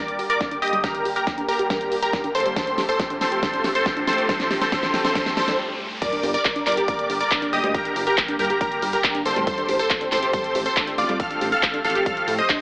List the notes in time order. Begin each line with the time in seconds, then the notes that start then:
Already playing: D3 G3 A#3 G4 A#4 D5 D6, riser
0.08 closed hi-hat
0.19 G4, open hi-hat
0.30 A#4 D5 D6, closed hi-hat
0.41 D3 G3 A#3 D4 G4, kick, snare, closed hi-hat
0.51 D4, closed hi-hat
0.62 D3 G3 A#3 G4 D#5 D#6, open hi-hat
0.68 closed hi-hat
0.73 G3, closed hi-hat
0.84 D3 G3 A#3 G4 A#4 A#5, kick, snare, closed hi-hat
0.95 D4, closed hi-hat
1.05 G4, open hi-hat
1.16 G4 A#4 A#5, closed hi-hat
1.27 D3 G3 A#3 G4, kick, snare, closed hi-hat
1.38 D4, closed hi-hat
1.48 D3 G3 A#3 G4 A#4 A#5, open hi-hat
1.59 D3 G3 A#3 G4, closed hi-hat
1.70 D3 G3 A#3 G4 A#4 A#5, kick, snare, closed hi-hat
1.81 closed hi-hat
1.92 G4, open hi-hat
2.02 G4 A#4 A#5, closed hi-hat
2.13 D3 G3 A#3 D4 G4, kick, snare, closed hi-hat
2.24 D4, closed hi-hat
2.35 D3 G3 A#3 G4 A4 C5 C6, open hi-hat
2.40 closed hi-hat
2.46 G3, closed hi-hat
2.56 A2 F3 G3 A3 C4 G4 A4 C5 C6, kick, snare, closed hi-hat
2.67 D4, closed hi-hat
2.78 G4, snare, open hi-hat
2.89 A4 C5 C6, closed hi-hat
3.00 A2 F3 A3 C4 G4, kick, snare, closed hi-hat
3.10 D4, closed hi-hat
3.21 A2 F3 A3 C4 G4 A4 C5 C6, snare, open hi-hat
3.32 A2 F3 A3 C4 G4, closed hi-hat
3.43 A2 F3 G3 A3 C4 G4 A4 C5 C6, kick, snare, closed hi-hat
3.54 D4, closed hi-hat
3.64 G4, snare, open hi-hat
3.75 A4 C5 C6, closed hi-hat
3.86 A2 F3 A3 C4 G4, kick, snare, closed hi-hat
3.97 D4, closed hi-hat
4.07 A2 F3 A3 C4 G4 A4 C5 C6, snare, open hi-hat
4.13 closed hi-hat
4.18 G4, closed hi-hat
4.29 A2 F3 G3 A3 C4 G4 A4 C5 C6, kick, snare, closed hi-hat
4.40 D4, snare, closed hi-hat
4.51 G4, snare, open hi-hat
4.61 A4 C5 C6, snare, closed hi-hat
4.72 A2 F3 G3 A3 C4 G4 A4 C5 C6, kick, snare, closed hi-hat
4.83 D4, snare, closed hi-hat
4.94 A2 F3 A3 C4 G4, snare, open hi-hat
5.05 A2 F3 A3 C4 G4 A4 C5 C6, snare, closed hi-hat
5.15 A2 F3 G3 A3 C4 G4 A4 C5 C6, kick, snare, closed hi-hat, swell
5.26 D4, snare, closed hi-hat
5.37 G3 A4 C5 C6, snare, open hi-hat
5.48 D4, snare, closed hi-hat
6.02 D3 G3 A#3 G4 A#4 D5 D6, kick, closed hi-hat, crash, sub drop
6.13 D4, closed hi-hat
6.23 G1 G4, open hi-hat
6.34 A#4 D5 D6, closed hi-hat
6.45 D3 G3 A#3 G4, kick, clap, closed hi-hat
6.56 D4, closed hi-hat
6.66 G1 D3 G3 A#3 G4 A#4 D5 D6, clap, open hi-hat
6.72 closed hi-hat
6.77 D3 G3 A#3 G4, closed hi-hat
6.88 D3 G3 A#3 G4 A#4 D5 D6, kick, closed hi-hat
6.99 closed hi-hat
7.10 G1 G4, open hi-hat
7.21 A#4 D5 D6, closed hi-hat
7.31 D3 G3 A#3 D4 G4, kick, clap, closed hi-hat
7.42 D4, closed hi-hat
7.53 G1 D3 G3 A#3 G4 D#5 D#6, open hi-hat
7.64 D2 G3, closed hi-hat
7.74 D3 G3 A#3 G4 A#4 A#5, kick, closed hi-hat
7.85 D4, closed hi-hat
7.96 G1 G4, open hi-hat
8.07 G4 A#4 A#5, closed hi-hat
8.18 D3 G3 A#3 G4, kick, clap, closed hi-hat
8.28 D4, closed hi-hat
8.39 G1 D3 G3 A#3 G4 A#4 A#5, open hi-hat
8.45 closed hi-hat
8.50 D3 G3 A#3 G4, closed hi-hat
8.61 D3 G3 A#3 G4 A#4 A#5, kick, closed hi-hat
8.72 closed hi-hat
8.82 G1 G4, open hi-hat
8.93 G4 A#4 A#5, closed hi-hat
9.04 D3 G3 A#3 D4 G4, kick, clap, closed hi-hat
9.15 D4, closed hi-hat
9.25 G1 D3 G3 A#3 G4 A4 C5 C6, open hi-hat
9.36 A1 G3, closed hi-hat
9.47 F3 G3 A3 C4 G4 A4 C5 C6, kick, closed hi-hat
9.58 D4, closed hi-hat
9.69 A1 G4, open hi-hat
9.79 A4 C5 C6, closed hi-hat
9.90 F3 A3 C4 G4, kick, clap, closed hi-hat
10.01 D4, closed hi-hat
10.12 A1 F3 A3 C4 G4 A4 C5 C6, clap, open hi-hat
10.17 closed hi-hat
10.23 F3 A3 C4 G4, closed hi-hat
10.33 F3 G3 A3 C4 G4 A4 C5 C6, kick, closed hi-hat
10.44 closed hi-hat
10.55 A1 G4, open hi-hat
10.66 A4 C5 C6, closed hi-hat
10.77 F3 A3 C4 D4 G4, kick, clap, closed hi-hat
10.87 D4, closed hi-hat
10.98 A1 F3 A3 C4 F4 G4 D5 D6, open hi-hat
11.09 F2 G3, closed hi-hat
11.20 F3 G3 A3 C4 G4 A4 F5 F6, kick, closed hi-hat
11.31 D4, closed hi-hat
11.41 A1 G4, open hi-hat
11.52 A4 F5 F6, closed hi-hat
11.63 F3 A3 C4 G4, kick, clap, closed hi-hat
11.74 D4, closed hi-hat
11.85 A1 F3 A3 C4 G4 A4 F5 F6, open hi-hat
11.90 closed hi-hat
11.95 F3 A3 C4 G4, closed hi-hat
12.06 F3 G3 A3 C4 G4 A4 F5 F6, kick, closed hi-hat
12.17 closed hi-hat
12.28 A2 G4, open hi-hat
12.39 C5 D#5 D#6, closed hi-hat
12.49 F3 A3 C4 D4 G4, kick, clap, closed hi-hat